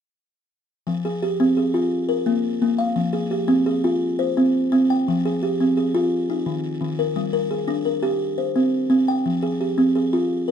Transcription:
0, 0, Header, 1, 2, 480
1, 0, Start_track
1, 0, Tempo, 349243
1, 1193, Time_signature, 12, 3, 24, 8
1, 14448, End_track
2, 0, Start_track
2, 0, Title_t, "Kalimba"
2, 0, Program_c, 0, 108
2, 1192, Note_on_c, 0, 53, 74
2, 1443, Note_on_c, 0, 68, 60
2, 1673, Note_off_c, 0, 53, 0
2, 1684, Note_on_c, 0, 67, 61
2, 1924, Note_on_c, 0, 60, 74
2, 2140, Note_off_c, 0, 68, 0
2, 2157, Note_on_c, 0, 68, 57
2, 2392, Note_on_c, 0, 65, 68
2, 2399, Note_off_c, 0, 60, 0
2, 2399, Note_off_c, 0, 67, 0
2, 2633, Note_off_c, 0, 65, 0
2, 2867, Note_on_c, 0, 70, 61
2, 2876, Note_off_c, 0, 68, 0
2, 3108, Note_on_c, 0, 58, 75
2, 3583, Note_off_c, 0, 58, 0
2, 3591, Note_off_c, 0, 70, 0
2, 3599, Note_on_c, 0, 58, 72
2, 3828, Note_on_c, 0, 77, 58
2, 4066, Note_on_c, 0, 53, 74
2, 4077, Note_off_c, 0, 58, 0
2, 4301, Note_on_c, 0, 68, 59
2, 4311, Note_off_c, 0, 77, 0
2, 4548, Note_on_c, 0, 67, 57
2, 4551, Note_off_c, 0, 53, 0
2, 4783, Note_on_c, 0, 60, 73
2, 5017, Note_off_c, 0, 68, 0
2, 5034, Note_on_c, 0, 68, 61
2, 5269, Note_off_c, 0, 60, 0
2, 5272, Note_off_c, 0, 67, 0
2, 5279, Note_on_c, 0, 65, 71
2, 5517, Note_off_c, 0, 65, 0
2, 5755, Note_off_c, 0, 68, 0
2, 5758, Note_on_c, 0, 72, 60
2, 6009, Note_on_c, 0, 60, 71
2, 6471, Note_off_c, 0, 60, 0
2, 6477, Note_off_c, 0, 72, 0
2, 6487, Note_on_c, 0, 60, 76
2, 6737, Note_on_c, 0, 79, 57
2, 6962, Note_off_c, 0, 60, 0
2, 6987, Note_on_c, 0, 53, 79
2, 7207, Note_off_c, 0, 79, 0
2, 7222, Note_on_c, 0, 68, 62
2, 7451, Note_off_c, 0, 53, 0
2, 7459, Note_on_c, 0, 67, 59
2, 7703, Note_on_c, 0, 60, 66
2, 7916, Note_off_c, 0, 68, 0
2, 7932, Note_on_c, 0, 68, 57
2, 8167, Note_off_c, 0, 67, 0
2, 8169, Note_off_c, 0, 60, 0
2, 8171, Note_on_c, 0, 65, 73
2, 8403, Note_off_c, 0, 65, 0
2, 8644, Note_off_c, 0, 68, 0
2, 8655, Note_on_c, 0, 63, 54
2, 8881, Note_on_c, 0, 51, 72
2, 9340, Note_off_c, 0, 51, 0
2, 9357, Note_on_c, 0, 51, 68
2, 9365, Note_off_c, 0, 63, 0
2, 9606, Note_on_c, 0, 70, 56
2, 9836, Note_off_c, 0, 51, 0
2, 9840, Note_on_c, 0, 55, 74
2, 10059, Note_off_c, 0, 70, 0
2, 10075, Note_on_c, 0, 70, 60
2, 10317, Note_on_c, 0, 68, 57
2, 10318, Note_off_c, 0, 55, 0
2, 10550, Note_on_c, 0, 62, 73
2, 10775, Note_off_c, 0, 70, 0
2, 10792, Note_on_c, 0, 70, 57
2, 11030, Note_on_c, 0, 67, 74
2, 11032, Note_off_c, 0, 62, 0
2, 11036, Note_off_c, 0, 68, 0
2, 11272, Note_off_c, 0, 67, 0
2, 11513, Note_off_c, 0, 70, 0
2, 11515, Note_on_c, 0, 72, 51
2, 11760, Note_on_c, 0, 60, 64
2, 12213, Note_off_c, 0, 60, 0
2, 12229, Note_on_c, 0, 60, 68
2, 12234, Note_off_c, 0, 72, 0
2, 12484, Note_on_c, 0, 79, 61
2, 12711, Note_off_c, 0, 60, 0
2, 12723, Note_on_c, 0, 53, 70
2, 12955, Note_on_c, 0, 68, 59
2, 12958, Note_off_c, 0, 79, 0
2, 13198, Note_off_c, 0, 53, 0
2, 13202, Note_on_c, 0, 67, 54
2, 13438, Note_on_c, 0, 60, 67
2, 13664, Note_off_c, 0, 68, 0
2, 13681, Note_on_c, 0, 68, 58
2, 13915, Note_off_c, 0, 60, 0
2, 13916, Note_off_c, 0, 67, 0
2, 13924, Note_on_c, 0, 65, 68
2, 14157, Note_off_c, 0, 65, 0
2, 14395, Note_off_c, 0, 68, 0
2, 14403, Note_on_c, 0, 70, 54
2, 14448, Note_off_c, 0, 70, 0
2, 14448, End_track
0, 0, End_of_file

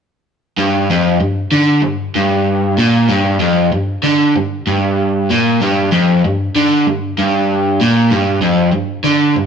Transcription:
0, 0, Header, 1, 2, 480
1, 0, Start_track
1, 0, Tempo, 625652
1, 456, Time_signature, 4, 2, 24, 8
1, 7260, End_track
2, 0, Start_track
2, 0, Title_t, "Overdriven electric guitar"
2, 0, Program_c, 0, 29
2, 444, Note_on_c, 0, 43, 97
2, 683, Note_off_c, 0, 43, 0
2, 693, Note_on_c, 0, 41, 98
2, 921, Note_off_c, 0, 41, 0
2, 924, Note_on_c, 0, 43, 62
2, 1122, Note_off_c, 0, 43, 0
2, 1164, Note_on_c, 0, 50, 97
2, 1398, Note_on_c, 0, 43, 66
2, 1402, Note_off_c, 0, 50, 0
2, 1598, Note_off_c, 0, 43, 0
2, 1653, Note_on_c, 0, 43, 89
2, 2126, Note_off_c, 0, 43, 0
2, 2132, Note_on_c, 0, 46, 104
2, 2366, Note_off_c, 0, 46, 0
2, 2370, Note_on_c, 0, 43, 104
2, 2604, Note_off_c, 0, 43, 0
2, 2607, Note_on_c, 0, 41, 99
2, 2843, Note_off_c, 0, 41, 0
2, 2857, Note_on_c, 0, 43, 66
2, 3048, Note_off_c, 0, 43, 0
2, 3094, Note_on_c, 0, 50, 87
2, 3327, Note_off_c, 0, 50, 0
2, 3341, Note_on_c, 0, 43, 70
2, 3530, Note_off_c, 0, 43, 0
2, 3581, Note_on_c, 0, 43, 91
2, 4051, Note_off_c, 0, 43, 0
2, 4068, Note_on_c, 0, 46, 102
2, 4294, Note_off_c, 0, 46, 0
2, 4307, Note_on_c, 0, 43, 102
2, 4534, Note_off_c, 0, 43, 0
2, 4543, Note_on_c, 0, 41, 106
2, 4772, Note_off_c, 0, 41, 0
2, 4794, Note_on_c, 0, 43, 71
2, 4977, Note_off_c, 0, 43, 0
2, 5029, Note_on_c, 0, 50, 94
2, 5255, Note_off_c, 0, 50, 0
2, 5270, Note_on_c, 0, 43, 69
2, 5455, Note_off_c, 0, 43, 0
2, 5509, Note_on_c, 0, 43, 98
2, 5976, Note_off_c, 0, 43, 0
2, 5989, Note_on_c, 0, 46, 102
2, 6216, Note_off_c, 0, 46, 0
2, 6224, Note_on_c, 0, 43, 97
2, 6453, Note_off_c, 0, 43, 0
2, 6458, Note_on_c, 0, 41, 94
2, 6691, Note_off_c, 0, 41, 0
2, 6697, Note_on_c, 0, 43, 65
2, 6889, Note_off_c, 0, 43, 0
2, 6934, Note_on_c, 0, 50, 98
2, 7169, Note_off_c, 0, 50, 0
2, 7182, Note_on_c, 0, 43, 70
2, 7260, Note_off_c, 0, 43, 0
2, 7260, End_track
0, 0, End_of_file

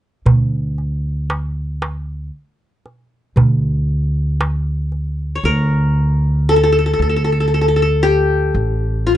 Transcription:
0, 0, Header, 1, 4, 480
1, 0, Start_track
1, 0, Tempo, 1034483
1, 119, Time_signature, 10, 3, 24, 8
1, 4255, End_track
2, 0, Start_track
2, 0, Title_t, "Qanun"
2, 0, Program_c, 0, 107
2, 2485, Note_on_c, 0, 73, 51
2, 2529, Note_on_c, 0, 70, 81
2, 2958, Note_off_c, 0, 73, 0
2, 3011, Note_on_c, 0, 69, 86
2, 3039, Note_off_c, 0, 70, 0
2, 3043, Note_off_c, 0, 69, 0
2, 3045, Note_on_c, 0, 69, 61
2, 3077, Note_off_c, 0, 69, 0
2, 3079, Note_on_c, 0, 69, 67
2, 3118, Note_off_c, 0, 69, 0
2, 3120, Note_on_c, 0, 69, 58
2, 3147, Note_off_c, 0, 69, 0
2, 3149, Note_on_c, 0, 69, 53
2, 3181, Note_off_c, 0, 69, 0
2, 3183, Note_on_c, 0, 69, 49
2, 3216, Note_off_c, 0, 69, 0
2, 3218, Note_on_c, 0, 69, 56
2, 3256, Note_off_c, 0, 69, 0
2, 3258, Note_on_c, 0, 69, 50
2, 3290, Note_off_c, 0, 69, 0
2, 3292, Note_on_c, 0, 69, 55
2, 3322, Note_off_c, 0, 69, 0
2, 3324, Note_on_c, 0, 69, 47
2, 3360, Note_off_c, 0, 69, 0
2, 3361, Note_on_c, 0, 69, 60
2, 3396, Note_off_c, 0, 69, 0
2, 3398, Note_on_c, 0, 69, 42
2, 3433, Note_off_c, 0, 69, 0
2, 3435, Note_on_c, 0, 69, 51
2, 3467, Note_off_c, 0, 69, 0
2, 3469, Note_on_c, 0, 69, 44
2, 3497, Note_off_c, 0, 69, 0
2, 3499, Note_on_c, 0, 69, 55
2, 3531, Note_off_c, 0, 69, 0
2, 3533, Note_on_c, 0, 69, 54
2, 3562, Note_off_c, 0, 69, 0
2, 3564, Note_on_c, 0, 69, 58
2, 3599, Note_off_c, 0, 69, 0
2, 3601, Note_on_c, 0, 69, 55
2, 3628, Note_off_c, 0, 69, 0
2, 3629, Note_on_c, 0, 69, 63
2, 3725, Note_on_c, 0, 67, 83
2, 4173, Note_off_c, 0, 69, 0
2, 4207, Note_on_c, 0, 65, 69
2, 4243, Note_off_c, 0, 65, 0
2, 4255, Note_off_c, 0, 67, 0
2, 4255, End_track
3, 0, Start_track
3, 0, Title_t, "Upright bass"
3, 0, Program_c, 1, 32
3, 119, Note_on_c, 1, 38, 60
3, 1062, Note_off_c, 1, 38, 0
3, 1559, Note_on_c, 1, 38, 73
3, 2502, Note_off_c, 1, 38, 0
3, 2521, Note_on_c, 1, 38, 73
3, 3223, Note_off_c, 1, 38, 0
3, 3243, Note_on_c, 1, 38, 74
3, 3944, Note_off_c, 1, 38, 0
3, 3965, Note_on_c, 1, 33, 76
3, 4255, Note_off_c, 1, 33, 0
3, 4255, End_track
4, 0, Start_track
4, 0, Title_t, "Darbuka"
4, 122, Note_on_c, 9, 64, 63
4, 168, Note_off_c, 9, 64, 0
4, 363, Note_on_c, 9, 62, 20
4, 409, Note_off_c, 9, 62, 0
4, 603, Note_on_c, 9, 63, 50
4, 649, Note_off_c, 9, 63, 0
4, 845, Note_on_c, 9, 63, 51
4, 891, Note_off_c, 9, 63, 0
4, 1325, Note_on_c, 9, 62, 20
4, 1372, Note_off_c, 9, 62, 0
4, 1564, Note_on_c, 9, 64, 65
4, 1610, Note_off_c, 9, 64, 0
4, 2044, Note_on_c, 9, 63, 57
4, 2091, Note_off_c, 9, 63, 0
4, 2282, Note_on_c, 9, 62, 17
4, 2329, Note_off_c, 9, 62, 0
4, 4255, End_track
0, 0, End_of_file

